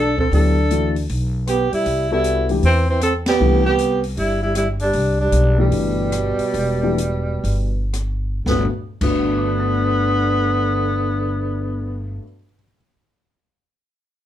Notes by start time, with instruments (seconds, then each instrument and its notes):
Already playing: upright bass B1, trombone D4, tenor saxophone A4
0.18 trombone C4, tenor saxophone A4, kick
0.32 upright bass D2, grand piano F#3 B3 E4 G4, trombone D4, tenor saxophone A4, open hi-hat
0.71 grand piano E3 A3 D4 F#4, closed hi-hat
0.96 open hi-hat
1.09 upright bass B1, open hi-hat
1.47 trombone B3, tenor saxophone G4, cross-stick, closed hi-hat
1.71 trombone G3, tenor saxophone E4, muted upright bass stroke, open hi-hat
1.86 upright bass C2, open hi-hat
2.11 trombone G3, grand piano B3 E4 F#4 A4, tenor saxophone E4
2.24 closed hi-hat
2.49 grand piano E3 A3 D4 G4, open hi-hat
2.63 upright bass E2, trombone E3, tenor saxophone C4, open hi-hat
2.89 trombone E3, tenor saxophone C4
3.01 trombone C4, tenor saxophone A4, cross-stick, closed hi-hat
3.26 trombone B3, tenor saxophone G4, snare, ride
3.40 upright bass C2, grand piano E3 A3 D4 G4
3.66 trombone B3, tenor saxophone G4
3.78 closed hi-hat
4.03 open hi-hat
4.17 upright bass G1, trombone G3, tenor saxophone E4, open hi-hat
4.43 trombone G3, tenor saxophone E4
4.55 trombone G3, tenor saxophone E4, cross-stick, closed hi-hat
4.79 trombone G3, tenor saxophone D4, open hi-hat
4.93 upright bass C2, open hi-hat
5.20 trombone G3, tenor saxophone D4
5.32 upright bass B1, closed hi-hat
5.58 trombone B2, grand piano E3 A3 D4 G4, tenor saxophone G3
5.72 upright bass G1, open hi-hat
6.12 cross-stick, closed hi-hat
6.38 muted upright bass stroke, open hi-hat
6.54 upright bass E1, open hi-hat
6.83 grand piano E3 A3 D4 G4
6.98 closed hi-hat
7.44 upright bass G1, open hi-hat
7.93 cross-stick, closed hi-hat
8.46 upright bass G1, grand piano G2 D3 A3 B3 F#4, trombone D3, tenor saxophone B3, kick, snare
9.01 upright bass G1, grand piano G2 D3 A3 B3 F#4 A4, trombone D3, tenor saxophone B3, kick, crash
9.10 grand piano D5
9.18 grand piano F#5
9.27 grand piano A5
9.37 grand piano D6
9.48 grand piano F#6
9.60 grand piano A6